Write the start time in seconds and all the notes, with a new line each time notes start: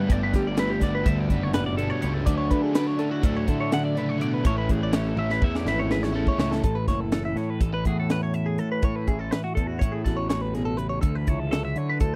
Already playing: A3 F#4 A4
0.00 B4
0.07 G1 G2 D3 G3 B3 D4, kick, closed hi-hat
0.12 D5
0.23 B4
0.34 G1 G3 G4, kick, snare, closed hi-hat
0.47 D5
0.55 D3 G3 B3 D4, snare, closed hi-hat
0.59 A3 B4
0.70 G4
0.79 G1 G3 B3 D4 F#4 D5, kick, snare, closed hi-hat
0.95 B4
1.03 D2 G2 D3 G3 B3 D4 E5, kick, closed hi-hat
1.20 D5
1.29 F#1 G3 B3 D4 F#4 B4, kick, closed hi-hat
1.43 C#5
1.54 A2 B4, snare, closed hi-hat
1.66 D5
1.77 G1 B2 G3 B3 D4 A4, closed hi-hat
1.90 C#5
2.01 C#2 G2 C#3 D3 G3 B3 D4 C#5, closed hi-hat
2.14 A4
2.25 D2 D3 F#3 A3 D4 D5, kick, closed hi-hat
2.38 C#5
2.50 D3 F#3 B4, kick, closed hi-hat
2.62 G#4
2.73 D3 F#3 A3 D4 B4, snare, closed hi-hat
2.87 C#5
2.97 F#3 A3 C#4 D4 A4, closed hi-hat
3.11 E4 F#4
3.21 D2 A2 D3 F#3 A3 D4 A4, kick, closed hi-hat
3.37 C#5
3.46 D3 F#3 A3 D4 E4 A4, kick, closed hi-hat
3.60 C#5
3.72 D3 F#5, snare, closed hi-hat
3.85 D5
3.95 F#3 A3 D4 B4, closed hi-hat
3.99 C#3
4.09 C#5
4.18 D3 F#3 A3 D4 D5, closed hi-hat
4.23 B2
4.34 B4
4.43 A1 A2 E3 A3 C#4 E4 C#5, kick, closed hi-hat
4.58 B4
4.69 A1 E3 G#4, kick, closed hi-hat
4.83 D5
4.92 E3 A3 C#4 E4 C#5, snare, closed hi-hat
5.08 A4
5.15 A1 A3 C#4 E4 E5, high tom
5.30 E4 B4, snare
5.41 E2 A2 E3 A3 C#4 E4 E5, kick
5.55 D5, snare
5.65 G#1 A3 C#4 E4 B4, snare
5.79 C#5
5.91 G#4 B4, snare
6.03 C#5, snare
6.13 A1 A3 C#4 E4 A4
6.27 C#5, kick
6.37 C#2 A2 E3 A3 C#4 E4 C#5, snare
6.51 A4, snare
6.63 A1 A2 A4, kick, closed hi-hat
6.75 B4
6.87 F#1 E4 C#5, kick, snare, closed hi-hat
7.00 A4
7.12 E3 C#4 A4, snare, closed hi-hat
7.25 E5
7.36 A2 C#5, snare, closed hi-hat
7.50 B4
7.61 A1 C#4 A4, kick, closed hi-hat
7.72 E4 B4
7.85 E2 A2 F#4 G#4, kick, closed hi-hat
8.00 A4
8.10 C#4 B4, snare, closed hi-hat
8.23 C#5
8.34 E5, closed hi-hat
8.46 G#4
8.58 A2 A4, closed hi-hat
8.72 B4
8.82 A2 C#5, kick, closed hi-hat
8.96 B4
9.07 A1 E4 G#4, kick, closed hi-hat
9.19 A4
9.31 E3 C#4 B4, snare, closed hi-hat
9.44 F#4
9.55 E2 A4, kick, closed hi-hat
9.67 F#4
9.79 A2 E4 C#5, kick, closed hi-hat
9.92 G#4
10.04 A1 E2 F#4 A4, kick, snare, closed hi-hat
10.17 C#5
10.29 A2 C#5, snare, closed hi-hat
10.41 B4
10.54 B2 G#4, snare, closed hi-hat
10.65 A4
10.77 C#3 B4, closed hi-hat
10.89 C#5
11.01 D2 D3 A4, kick, closed hi-hat
11.15 B4
11.27 C#2 E4 C#5, kick, closed hi-hat
11.39 A4
11.51 F#3 C#4 A4, snare, closed hi-hat
11.65 E5
11.76 D3 C#5, closed hi-hat
11.89 B4
12.00 D2 E4 A4, kick, closed hi-hat